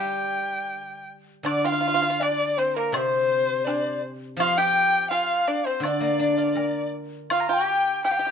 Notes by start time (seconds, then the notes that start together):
Already playing: D3 G3 G4 G5
1.43 D3 D4 D5, high woodblock
1.65 F4 F5 G5
1.69 F4 F5
1.81 F4
1.88 F4
1.94 F4
2.02 F4
2.10 F4
2.20 D4 D5, low woodblock
2.57 C4 C5
2.76 A#3 A#4
2.92 C3 C4 C5 D5, high woodblock
2.98 C5
3.65 D4 D5, low woodblock
4.37 F3 F4 F5, high woodblock
4.58 G4 G5
5.11 F4 F5, low woodblock
5.48 D4 D5
5.66 C4 C5
5.80 D3 F5, high woodblock
5.85 D4 D5
6.00 A#3
6.19 D4
6.38 F4
6.55 A#4 D5, low woodblock
7.30 F4 F5, high woodblock
7.40 A#5
7.49 G4 G5 A#5
7.54 G5
8.04 G4 G5, low woodblock
8.11 G4 F5
8.17 G4 G5
8.27 G4